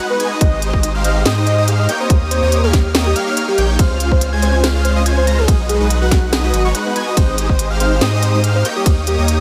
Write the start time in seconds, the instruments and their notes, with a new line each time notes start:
0.00 supersaw synth G#3 D#4 F#4 B4 F#5, digital synth lead F#6
0.10 soft synth lead B4
0.20 supersaw synth G#3 D#4 F#4 B4 G#5, digital synth lead G#6, closed hi-hat
0.31 supersaw synth G#3 D#4 F#4 B4 D#5, digital synth lead D#6
0.41 sub bass G#1, supersaw synth G#3 D#4 G4 C5, soft synth lead D#5, digital synth lead D#6, kick, closed hi-hat
0.62 closed hi-hat
0.73 sub bass G#1, supersaw synth G#3 D#4 G4 D#5, soft synth lead D#5, digital synth lead D#6, kick
0.83 closed hi-hat
0.95 supersaw synth G#3 D#4 G4 C5 F5, digital synth lead F6
1.04 supersaw synth G#3 D#4 G4 C5 F5, soft synth lead D#5, digital synth lead F6, closed hi-hat
1.25 sub bass G#2, supersaw synth G#3 D#4 G4 C5 D#5, digital synth lead D#6, snare, closed hi-hat
1.37 supersaw synth G#3 D#4 G4 C5 D#5, digital synth lead D#6
1.47 soft synth lead D#5, closed hi-hat
1.58 supersaw synth G#3 D#4 G4 C5 D#5, digital synth lead D#6
1.68 supersaw synth G#3 D#4 G4 C5 F5, digital synth lead F6, closed hi-hat
1.79 soft synth lead D#5
1.89 supersaw synth A#3 D#4 G4 C#5 G5, digital synth lead G6, closed hi-hat
2.00 supersaw synth A#3 D#4 G4 C#5 D#5, soft synth lead C5, digital synth lead D#6
2.10 sub bass D#2, supersaw synth A#3 D#4 G4 D#5, digital synth lead D#6, kick, closed hi-hat
2.31 soft synth lead C5, closed hi-hat
2.42 sub bass D#2, supersaw synth A#3 D#4 G4 C#5 D#5, digital synth lead D#6
2.52 closed hi-hat
2.63 supersaw synth A#3 D#4 G4 C#5 F5, soft synth lead G4, digital synth lead F6
2.73 supersaw synth A#3 D#4 G4 C#5 F5, digital synth lead F6, kick, snare, closed hi-hat
2.95 supersaw synth A#3 D#4 G4 C#5 D#5, digital synth lead D#6, snare, closed hi-hat
3.06 supersaw synth A#3 D#4 G4 C#5 D#5, soft synth lead G4, digital synth lead D#6
3.16 supersaw synth A#3 D#4 G4 C#5 F5, digital synth lead F6, closed hi-hat
3.27 supersaw synth A#3 D#4 G4 C#5 F5, digital synth lead F6
3.36 supersaw synth A#3 D#4 G4 C#5 F5, digital synth lead F6, closed hi-hat
3.48 supersaw synth A#3 D#4 G4 C#5 F5, soft synth lead G4, digital synth lead F6
3.58 sub bass A#1, supersaw synth A#3 D#4 G4 C#5 G5, digital synth lead G6, closed hi-hat
3.79 sub bass C#2, soft synth lead C5, digital synth lead F6, kick, closed hi-hat, ride
4.00 closed hi-hat
4.11 supersaw synth G#3 C#4 F4 C5 F5, soft synth lead C5, digital synth lead F6, kick
4.21 closed hi-hat
4.33 supersaw synth G#3 C#4 F4 C5 G#5, digital synth lead G#6
4.42 supersaw synth G#3 C#4 F4 C5 G#5, soft synth lead C5, digital synth lead G#6, closed hi-hat
4.63 supersaw synth G#3 C#4 F4 C5 F5, digital synth lead F6, snare, closed hi-hat, ride
4.75 supersaw synth G#3 C#4 F4 C5 F5, digital synth lead F6
4.85 soft synth lead C5, closed hi-hat
4.96 supersaw synth G#3 C#4 F4 C5 D#5, digital synth lead D#6
5.06 supersaw synth G#3 C#4 F4 C5 G#5, digital synth lead G#6, closed hi-hat
5.17 soft synth lead C5
5.27 supersaw synth G#3 C#4 F4 C5 A#5, digital synth lead A#6, closed hi-hat
5.38 supersaw synth G#3 C#4 F4 C5 F5, soft synth lead G#4, digital synth lead F6
5.48 sub bass B1, supersaw synth G#3 D#4 F#4 B4 D#5, digital synth lead D#6, kick, closed hi-hat, ride
5.69 soft synth lead G#4, closed hi-hat
5.80 sub bass B1, supersaw synth G#3 D#4 F#4 B4 D#5, digital synth lead D#6
5.90 closed hi-hat
6.01 supersaw synth G#3 D#4 F#4 B4 F#5, soft synth lead F#4, digital synth lead F#6
6.11 kick, snare, closed hi-hat
6.32 supersaw synth G#3 D#4 F#4 B4 D#5, digital synth lead D#6, snare, closed hi-hat, ride
6.44 supersaw synth G#3 D#4 F#4 B4 D#5, soft synth lead F#4, digital synth lead D#6
6.54 sub bass G#1, closed hi-hat
6.65 supersaw synth G#3 D#4 F#4 B4 C#5, digital synth lead C#6
6.75 supersaw synth G#3 D#4 F#4 B4 F#5, digital synth lead F#6, closed hi-hat
6.86 soft synth lead B4
6.96 supersaw synth G#3 D#4 F#4 B4 G#5, digital synth lead G#6, closed hi-hat
7.07 supersaw synth G#3 D#4 F#4 B4 D#5, digital synth lead D#6
7.17 sub bass G#1, supersaw synth G#3 D#4 G4 C5 D#5, soft synth lead C5, digital synth lead D#6, kick, closed hi-hat, ride
7.38 closed hi-hat
7.49 sub bass G#1, supersaw synth G#3 D#4 G4 C5 D#5, soft synth lead C5, digital synth lead D#6, kick
7.59 closed hi-hat
7.70 supersaw synth G#3 D#4 G4 C5 F5, digital synth lead F6
7.80 supersaw synth G#3 D#4 G4 C5 F5, soft synth lead C5, digital synth lead F6, closed hi-hat
8.01 sub bass G#2, supersaw synth G#3 D#4 G4 C5 D#5, digital synth lead D#6, snare, closed hi-hat, ride
8.13 supersaw synth G#3 D#4 G4 C5 D#5, digital synth lead D#6
8.23 soft synth lead C5, closed hi-hat
8.34 supersaw synth G#3 D#4 G4 C5 D#5, digital synth lead D#6
8.44 supersaw synth G#3 D#4 G4 C5 F5, digital synth lead F6, closed hi-hat
8.55 soft synth lead C5
8.65 supersaw synth A#3 D#4 G4 C#5 G5, digital synth lead G6, closed hi-hat
8.76 supersaw synth A#3 D#4 G4 C#5 D#5, soft synth lead G4, digital synth lead D#6
8.86 sub bass D#2, supersaw synth A#3 D#4 G4 D#5, digital synth lead D#6, kick, closed hi-hat, ride
9.07 soft synth lead G4, closed hi-hat
9.18 sub bass D#2, supersaw synth A#3 D#4 G4 C#5 D#5, digital synth lead D#6
9.28 closed hi-hat